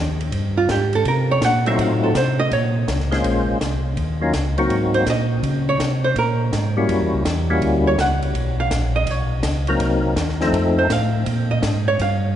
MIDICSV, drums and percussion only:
0, 0, Header, 1, 2, 480
1, 0, Start_track
1, 0, Key_signature, -5, "minor"
1, 0, Tempo, 364520
1, 1391, Time_signature, 4, 2, 24, 8
1, 16274, End_track
2, 0, Start_track
2, 0, Title_t, "Drums"
2, 271, Note_on_c, 9, 51, 44
2, 402, Note_off_c, 9, 51, 0
2, 425, Note_on_c, 9, 36, 18
2, 425, Note_on_c, 9, 51, 58
2, 556, Note_off_c, 9, 51, 0
2, 557, Note_off_c, 9, 36, 0
2, 906, Note_on_c, 9, 38, 64
2, 908, Note_on_c, 9, 36, 18
2, 908, Note_on_c, 9, 44, 46
2, 908, Note_on_c, 9, 51, 61
2, 1037, Note_off_c, 9, 38, 0
2, 1039, Note_off_c, 9, 36, 0
2, 1040, Note_off_c, 9, 44, 0
2, 1040, Note_off_c, 9, 51, 0
2, 1222, Note_on_c, 9, 51, 46
2, 1354, Note_off_c, 9, 51, 0
2, 1385, Note_on_c, 9, 36, 17
2, 1386, Note_on_c, 9, 51, 58
2, 1517, Note_off_c, 9, 36, 0
2, 1518, Note_off_c, 9, 51, 0
2, 1864, Note_on_c, 9, 38, 71
2, 1866, Note_on_c, 9, 36, 18
2, 1866, Note_on_c, 9, 44, 53
2, 1866, Note_on_c, 9, 51, 66
2, 1995, Note_off_c, 9, 38, 0
2, 1998, Note_off_c, 9, 36, 0
2, 1998, Note_off_c, 9, 44, 0
2, 1998, Note_off_c, 9, 51, 0
2, 2189, Note_on_c, 9, 51, 46
2, 2320, Note_off_c, 9, 51, 0
2, 2348, Note_on_c, 9, 36, 19
2, 2353, Note_on_c, 9, 51, 64
2, 2480, Note_off_c, 9, 36, 0
2, 2485, Note_off_c, 9, 51, 0
2, 2829, Note_on_c, 9, 38, 68
2, 2831, Note_on_c, 9, 36, 24
2, 2832, Note_on_c, 9, 44, 53
2, 2832, Note_on_c, 9, 51, 64
2, 2961, Note_off_c, 9, 38, 0
2, 2963, Note_off_c, 9, 36, 0
2, 2964, Note_off_c, 9, 44, 0
2, 2964, Note_off_c, 9, 51, 0
2, 3311, Note_on_c, 9, 36, 22
2, 3311, Note_on_c, 9, 51, 55
2, 3443, Note_off_c, 9, 36, 0
2, 3443, Note_off_c, 9, 51, 0
2, 3791, Note_on_c, 9, 36, 22
2, 3792, Note_on_c, 9, 38, 65
2, 3795, Note_on_c, 9, 44, 52
2, 3795, Note_on_c, 9, 51, 59
2, 3923, Note_off_c, 9, 36, 0
2, 3924, Note_off_c, 9, 38, 0
2, 3927, Note_off_c, 9, 44, 0
2, 3927, Note_off_c, 9, 51, 0
2, 3952, Note_on_c, 9, 38, 28
2, 4084, Note_off_c, 9, 38, 0
2, 4110, Note_on_c, 9, 51, 41
2, 4119, Note_on_c, 9, 38, 40
2, 4242, Note_off_c, 9, 51, 0
2, 4250, Note_off_c, 9, 38, 0
2, 4270, Note_on_c, 9, 51, 60
2, 4271, Note_on_c, 9, 36, 19
2, 4401, Note_off_c, 9, 51, 0
2, 4403, Note_off_c, 9, 36, 0
2, 4752, Note_on_c, 9, 36, 18
2, 4752, Note_on_c, 9, 38, 59
2, 4754, Note_on_c, 9, 44, 52
2, 4754, Note_on_c, 9, 51, 55
2, 4883, Note_off_c, 9, 38, 0
2, 4884, Note_off_c, 9, 36, 0
2, 4886, Note_off_c, 9, 44, 0
2, 4886, Note_off_c, 9, 51, 0
2, 5227, Note_on_c, 9, 51, 51
2, 5228, Note_on_c, 9, 36, 23
2, 5359, Note_off_c, 9, 51, 0
2, 5360, Note_off_c, 9, 36, 0
2, 5705, Note_on_c, 9, 38, 61
2, 5706, Note_on_c, 9, 36, 19
2, 5708, Note_on_c, 9, 44, 57
2, 5708, Note_on_c, 9, 51, 63
2, 5837, Note_off_c, 9, 38, 0
2, 5838, Note_off_c, 9, 36, 0
2, 5839, Note_off_c, 9, 44, 0
2, 5839, Note_off_c, 9, 51, 0
2, 6026, Note_on_c, 9, 51, 44
2, 6158, Note_off_c, 9, 51, 0
2, 6186, Note_on_c, 9, 36, 18
2, 6191, Note_on_c, 9, 51, 50
2, 6317, Note_off_c, 9, 36, 0
2, 6322, Note_off_c, 9, 51, 0
2, 6507, Note_on_c, 9, 51, 45
2, 6639, Note_off_c, 9, 51, 0
2, 6667, Note_on_c, 9, 38, 62
2, 6668, Note_on_c, 9, 36, 22
2, 6669, Note_on_c, 9, 44, 49
2, 6669, Note_on_c, 9, 51, 64
2, 6798, Note_off_c, 9, 38, 0
2, 6800, Note_off_c, 9, 36, 0
2, 6801, Note_off_c, 9, 44, 0
2, 6801, Note_off_c, 9, 51, 0
2, 7150, Note_on_c, 9, 36, 22
2, 7156, Note_on_c, 9, 51, 59
2, 7282, Note_off_c, 9, 36, 0
2, 7288, Note_off_c, 9, 51, 0
2, 7631, Note_on_c, 9, 36, 21
2, 7634, Note_on_c, 9, 38, 66
2, 7637, Note_on_c, 9, 44, 54
2, 7637, Note_on_c, 9, 51, 68
2, 7762, Note_off_c, 9, 36, 0
2, 7766, Note_off_c, 9, 38, 0
2, 7768, Note_off_c, 9, 44, 0
2, 7768, Note_off_c, 9, 51, 0
2, 8110, Note_on_c, 9, 51, 57
2, 8111, Note_on_c, 9, 36, 18
2, 8242, Note_off_c, 9, 51, 0
2, 8243, Note_off_c, 9, 36, 0
2, 8593, Note_on_c, 9, 36, 25
2, 8594, Note_on_c, 9, 38, 60
2, 8597, Note_on_c, 9, 44, 60
2, 8597, Note_on_c, 9, 51, 65
2, 8725, Note_off_c, 9, 36, 0
2, 8726, Note_off_c, 9, 38, 0
2, 8728, Note_off_c, 9, 44, 0
2, 8728, Note_off_c, 9, 51, 0
2, 9071, Note_on_c, 9, 51, 59
2, 9073, Note_on_c, 9, 36, 21
2, 9202, Note_off_c, 9, 51, 0
2, 9204, Note_off_c, 9, 36, 0
2, 9550, Note_on_c, 9, 38, 64
2, 9553, Note_on_c, 9, 36, 19
2, 9553, Note_on_c, 9, 44, 46
2, 9553, Note_on_c, 9, 51, 70
2, 9682, Note_off_c, 9, 38, 0
2, 9685, Note_off_c, 9, 36, 0
2, 9685, Note_off_c, 9, 44, 0
2, 9685, Note_off_c, 9, 51, 0
2, 10031, Note_on_c, 9, 51, 55
2, 10032, Note_on_c, 9, 36, 18
2, 10163, Note_off_c, 9, 51, 0
2, 10164, Note_off_c, 9, 36, 0
2, 10512, Note_on_c, 9, 36, 23
2, 10513, Note_on_c, 9, 38, 67
2, 10516, Note_on_c, 9, 44, 50
2, 10516, Note_on_c, 9, 51, 60
2, 10644, Note_off_c, 9, 36, 0
2, 10645, Note_off_c, 9, 38, 0
2, 10648, Note_off_c, 9, 44, 0
2, 10648, Note_off_c, 9, 51, 0
2, 10830, Note_on_c, 9, 51, 43
2, 10962, Note_off_c, 9, 51, 0
2, 10990, Note_on_c, 9, 36, 19
2, 10994, Note_on_c, 9, 51, 57
2, 11122, Note_off_c, 9, 36, 0
2, 11125, Note_off_c, 9, 51, 0
2, 11467, Note_on_c, 9, 36, 23
2, 11467, Note_on_c, 9, 38, 63
2, 11469, Note_on_c, 9, 44, 58
2, 11469, Note_on_c, 9, 51, 66
2, 11599, Note_off_c, 9, 36, 0
2, 11599, Note_off_c, 9, 38, 0
2, 11601, Note_off_c, 9, 44, 0
2, 11601, Note_off_c, 9, 51, 0
2, 11940, Note_on_c, 9, 51, 63
2, 11943, Note_on_c, 9, 36, 17
2, 12072, Note_off_c, 9, 51, 0
2, 12075, Note_off_c, 9, 36, 0
2, 12416, Note_on_c, 9, 38, 64
2, 12418, Note_on_c, 9, 44, 60
2, 12418, Note_on_c, 9, 51, 67
2, 12421, Note_on_c, 9, 36, 21
2, 12548, Note_off_c, 9, 38, 0
2, 12550, Note_off_c, 9, 44, 0
2, 12550, Note_off_c, 9, 51, 0
2, 12553, Note_off_c, 9, 36, 0
2, 12735, Note_on_c, 9, 51, 41
2, 12866, Note_off_c, 9, 51, 0
2, 12902, Note_on_c, 9, 36, 21
2, 12902, Note_on_c, 9, 51, 63
2, 13033, Note_off_c, 9, 36, 0
2, 13034, Note_off_c, 9, 51, 0
2, 13383, Note_on_c, 9, 38, 64
2, 13384, Note_on_c, 9, 36, 26
2, 13386, Note_on_c, 9, 44, 53
2, 13386, Note_on_c, 9, 51, 66
2, 13515, Note_off_c, 9, 38, 0
2, 13516, Note_off_c, 9, 36, 0
2, 13517, Note_off_c, 9, 44, 0
2, 13517, Note_off_c, 9, 51, 0
2, 13548, Note_on_c, 9, 38, 29
2, 13679, Note_off_c, 9, 38, 0
2, 13704, Note_on_c, 9, 38, 45
2, 13835, Note_off_c, 9, 38, 0
2, 13866, Note_on_c, 9, 36, 26
2, 13875, Note_on_c, 9, 51, 63
2, 13998, Note_off_c, 9, 36, 0
2, 14007, Note_off_c, 9, 51, 0
2, 14349, Note_on_c, 9, 36, 20
2, 14351, Note_on_c, 9, 38, 62
2, 14354, Note_on_c, 9, 44, 56
2, 14354, Note_on_c, 9, 51, 72
2, 14481, Note_off_c, 9, 36, 0
2, 14483, Note_off_c, 9, 38, 0
2, 14486, Note_off_c, 9, 44, 0
2, 14486, Note_off_c, 9, 51, 0
2, 14828, Note_on_c, 9, 36, 19
2, 14830, Note_on_c, 9, 51, 64
2, 14960, Note_off_c, 9, 36, 0
2, 14961, Note_off_c, 9, 51, 0
2, 15308, Note_on_c, 9, 36, 24
2, 15308, Note_on_c, 9, 38, 71
2, 15310, Note_on_c, 9, 44, 53
2, 15310, Note_on_c, 9, 51, 67
2, 15439, Note_off_c, 9, 38, 0
2, 15440, Note_off_c, 9, 36, 0
2, 15442, Note_off_c, 9, 44, 0
2, 15442, Note_off_c, 9, 51, 0
2, 15790, Note_on_c, 9, 36, 20
2, 15794, Note_on_c, 9, 51, 59
2, 15922, Note_off_c, 9, 36, 0
2, 15926, Note_off_c, 9, 51, 0
2, 16274, End_track
0, 0, End_of_file